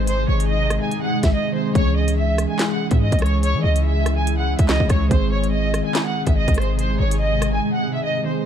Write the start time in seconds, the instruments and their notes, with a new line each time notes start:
Already playing: 808-style bass G#1, ambient pad C3 G#3 D#4 G#4, tine electric piano D#3 G#3 C4 G#4
0.07 violin section C5, closed hi-hat
0.28 808-style bass G#1, violin section C#5
0.40 closed hi-hat
0.50 violin section D#5
0.70 cross-stick, closed hi-hat
0.82 violin section G#5
0.92 closed hi-hat
1.02 violin section F#5
1.23 808-style bass G#1, violin section E5, kick, snare, closed hi-hat
1.33 violin section D#5
1.53 tine electric piano D#3 G#3 C4 G#4, violin section C5
1.72 808-style bass C#2, ambient pad C#3 E4, tine electric piano E3 G#3, violin section C#5, kick, closed hi-hat
1.77 tine electric piano C#4 G#4
1.96 violin section D#5
2.08 closed hi-hat
2.17 violin section E5
2.38 cross-stick, closed hi-hat
2.49 violin section G#5
2.59 snare, clap, closed hi-hat
2.70 violin section F#5
2.91 808-style bass G#2, violin section E5, kick, closed hi-hat
3.01 violin section D#5
3.12 808-style bass C#2, kick, closed hi-hat
3.19 violin section C#5, cross-stick, closed hi-hat
3.26 closed hi-hat
3.43 violin section C#5, closed hi-hat
3.54 808-style bass E3
3.64 808-style bass C#2, violin section D#5
3.76 closed hi-hat
3.85 violin section E5
4.06 cross-stick, closed hi-hat
4.17 violin section G#5
4.27 closed hi-hat
4.38 violin section F#5
4.59 808-style bass C#2, violin section E5, kick, closed hi-hat
4.67 tine electric piano E3 G#3 C#4 G#4, violin section D#5, snare, clap
4.80 808-style bass C#2, kick
4.90 808-style bass C#2, violin section C#5, kick, cross-stick, closed hi-hat
5.08 808-style bass G#1, ambient pad C3 G#3 D#4 G#4, tine electric piano D#3 G#3, violin section C5, kick, closed hi-hat
5.13 tine electric piano C4 G#4
5.32 violin section C#5
5.44 closed hi-hat
5.53 violin section D#5
5.74 cross-stick, closed hi-hat
5.85 violin section G#5
5.95 snare, clap, closed hi-hat
6.06 violin section F#5
6.27 808-style bass G#1, violin section E5, kick, closed hi-hat
6.37 violin section D#5
6.48 808-style bass G#1, kick, closed hi-hat
6.54 violin section C5, cross-stick, closed hi-hat
6.62 closed hi-hat
6.79 violin section C5, closed hi-hat
7.00 808-style bass G#1, violin section C#5
7.11 closed hi-hat
7.21 violin section D#5
7.42 cross-stick, closed hi-hat
7.53 violin section G#5
7.74 violin section F#5
7.95 violin section E5
8.05 violin section D#5
8.24 tine electric piano D#3 G#3 C4 G#4, violin section C5